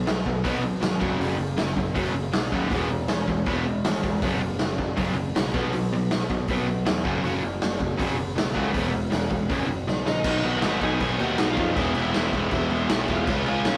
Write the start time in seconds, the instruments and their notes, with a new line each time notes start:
0.06 picked electric bass B1, overdriven electric guitar B2 F#3, snare, open hi-hat
0.26 picked electric bass B1, overdriven electric guitar B2 F#3, kick
0.44 picked electric bass B1, overdriven electric guitar B2 F#3 B3, kick, open hi-hat
0.62 overdriven electric guitar B2 F#3
0.81 picked electric bass G#1, overdriven electric guitar B2 F#3, snare, open hi-hat
1.00 picked electric bass F#1, overdriven electric guitar F#2 C#3 F#3, kick
1.18 picked electric bass F#1, overdriven electric guitar F#2 C#3 F#3, open hi-hat
1.37 picked electric bass F#1, overdriven electric guitar F#2 C#3
1.57 picked electric bass F#1, overdriven electric guitar F#2 C#3, snare, open hi-hat
1.76 picked electric bass F#1, overdriven electric guitar F#2 C#3, kick
1.94 picked electric bass F#1, overdriven electric guitar F#2 C#3 F#3, kick, open hi-hat
2.14 overdriven electric guitar F#2 C#3
2.32 picked electric bass B1, overdriven electric guitar F#2 C#3, snare, open hi-hat
2.52 picked electric bass D#2, overdriven electric guitar F#2 C#3 F#3, kick
2.71 picked electric bass E1, overdriven electric guitar E3 G#3 B3, kick, open hi-hat
2.89 picked electric bass E1, overdriven electric guitar E3 G#3
3.08 picked electric bass E1, overdriven electric guitar E3 G#3, snare, open hi-hat
3.28 picked electric bass E1, overdriven electric guitar E3 G#3, kick
3.46 picked electric bass E1, overdriven electric guitar E3 G#3 B3, kick, open hi-hat
3.65 overdriven electric guitar E3 G#3
3.84 picked electric bass G#1, overdriven electric guitar E3 G#3, snare, open hi-hat
4.03 picked electric bass E1, overdriven electric guitar E3 G#3, kick
4.22 picked electric bass F#1, overdriven electric guitar F#2 C#3 F#3, kick, open hi-hat
4.40 picked electric bass F#1, overdriven electric guitar F#2 C#3
4.59 picked electric bass F#1, overdriven electric guitar F#2 C#3, snare, open hi-hat
4.78 picked electric bass F#1, overdriven electric guitar F#2 C#3, kick
4.96 picked electric bass F#1, overdriven electric guitar F#2 C#3 F#3, kick, open hi-hat
5.15 overdriven electric guitar F#2 C#3
5.35 picked electric bass B1, overdriven electric guitar F#2 C#3, snare, open hi-hat
5.54 picked electric bass B1, overdriven electric guitar B2 F#3 B3, kick
5.72 picked electric bass B1, overdriven electric guitar B2 F#3, open hi-hat
5.93 picked electric bass B1, overdriven electric guitar B2 F#3
6.11 picked electric bass B1, overdriven electric guitar B2 F#3, snare, open hi-hat
6.30 picked electric bass B1, overdriven electric guitar B2 F#3, kick
6.48 picked electric bass B1, overdriven electric guitar B2 F#3 B3, kick, open hi-hat
6.67 overdriven electric guitar B2 F#3
6.85 picked electric bass E2, overdriven electric guitar B2 F#3, snare, open hi-hat
7.05 picked electric bass F#1, overdriven electric guitar F#2 C#3 F#3, kick
7.23 picked electric bass F#1, overdriven electric guitar F#2 C#3 F#3, open hi-hat
7.43 picked electric bass F#1, overdriven electric guitar F#2 C#3
7.62 picked electric bass F#1, overdriven electric guitar F#2 C#3, snare, open hi-hat
7.79 picked electric bass F#1, overdriven electric guitar F#2 C#3, kick
7.98 picked electric bass F#1, overdriven electric guitar F#2 C#3 F#3, kick, open hi-hat
8.17 overdriven electric guitar F#2 C#3
8.36 picked electric bass B1, overdriven electric guitar F#2 C#3, snare, open hi-hat
8.54 picked electric bass C#2, overdriven electric guitar F#2 C#3 F#3, kick
8.73 picked electric bass E1, overdriven electric guitar E3 G#3 B3, kick, open hi-hat
8.90 picked electric bass E1, overdriven electric guitar E3 G#3
9.11 picked electric bass E1, overdriven electric guitar E3 G#3, snare, open hi-hat
9.30 picked electric bass E1, overdriven electric guitar E3 G#3, kick
9.50 picked electric bass F#1, overdriven electric guitar F#2 C#3 E3, kick, open hi-hat
9.68 overdriven electric guitar F#2 C#3
9.87 picked electric bass B1, overdriven electric guitar F#2 C#3, snare
10.05 picked electric bass A#1, overdriven electric guitar F#2 C#3, lead electric guitar D#4 D#5, snare
10.24 picked electric bass B1, overdriven electric guitar B2 D#3 F#3 B3 D#4, kick, crash
10.43 picked electric bass B1, overdriven electric guitar B2 D#3 F#3 B3 D#4, lead electric guitar F#4 F#5, crash
10.62 picked electric bass G#1, overdriven electric guitar B2 D#3 F#3 B3 D#4, snare, crash
10.81 picked electric bass B1, overdriven electric guitar B2 D#3 F#3 B3 D#4, lead electric guitar G#4 G#5, kick, crash
11.00 picked electric bass B1, overdriven electric guitar B2 D#3 F#3 B3 D#4, kick, crash
11.19 picked electric bass D#2, overdriven electric guitar B2 D#3 F#3 B3 D#4, lead electric guitar F#4 F#5, crash
11.37 picked electric bass B1, overdriven electric guitar B2 D#3 F#3 B3 D#4, snare, crash
11.49 lead electric guitar F4 F5
11.55 picked electric bass F2, overdriven electric guitar B2 D#3 F#3 B3 D#4, kick, crash
11.75 picked electric bass E1, overdriven electric guitar E3 G#3 B3 E4, lead electric guitar E4 E5, kick, crash
11.95 picked electric bass E1, overdriven electric guitar E3 G#3 B3 E4, crash
12.14 picked electric bass E1, overdriven electric guitar E3 G#3 B3 E4, snare, crash
12.33 picked electric bass E1, overdriven electric guitar E3 G#3 B3 E4, kick, crash
12.51 picked electric bass E1, overdriven electric guitar E3 G#3 B3 E4, kick, crash
12.70 picked electric bass E1, overdriven electric guitar E3 G#3 B3 E4, crash
12.89 picked electric bass B1, overdriven electric guitar E3 G#3 B3 E4, snare, crash
13.08 picked electric bass E1, overdriven electric guitar E3 G#3 B3 E4, lead electric guitar F4, kick, crash
13.12 lead electric guitar F5
13.27 picked electric bass C#2, overdriven electric guitar C#3 G#3 C#4 F4, kick, crash
13.46 picked electric bass C#2, overdriven electric guitar C#3 G#3 C#4 F4, lead electric guitar G#4 G#5, crash
13.65 picked electric bass B1, overdriven electric guitar C#3 G#3 C#4 F4, snare, crash